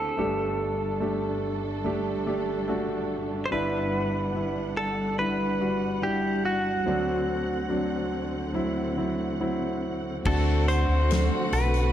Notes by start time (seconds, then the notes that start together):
Already playing: D2 D3 C4 D4 E4 F#4 A4
0.17 G1 G2 G3 A3 D4 G4 A4
1.00 A3 D4 G4
1.84 A3 D4 G4
2.26 A3 D4 G4
2.68 A3 D4 F#4
3.46 C5
3.51 G1 G2 G3 D4 E4 B4 F#5
4.35 G3 D4 E4
4.77 A4
5.18 G3 D4 E4 B4
5.60 G3 D4 F#4
6.02 G3 D4 E4 G4
6.45 F#4
6.86 D2 D3 F#3 C4 D4
7.69 F#3 C4 D4
8.53 F#3 C4 E4
8.97 F#3 C4 E4
9.40 F#3 C4 E4
10.25 D2 D3 A3 C4 D4 F#4 A4 F#5, kick, crash
10.68 C5, closed hi-hat
10.88 D2
11.09 A3 C4 D4 A4, snare, closed hi-hat
11.52 B1 B4, closed hi-hat
11.74 closed hi-hat